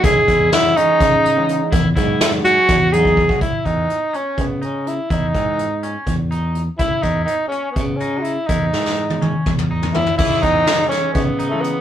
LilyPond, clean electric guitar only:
\new Staff \with { instrumentName = "Clean electric guitar" } { \time 7/8 \key cis \minor \tempo 4 = 124 e'8 e'4 cis'4 dis'4 | e'8 e'4 cis'4 dis'4 | e'8 e4 cis'4 dis'4 | e'8 e4 cis'4 dis'4 |
e'8 e'4 cis'4 dis'4 | e'8 e4 cis'4 dis'4 | e'8 e4 cis'4 dis'4 | }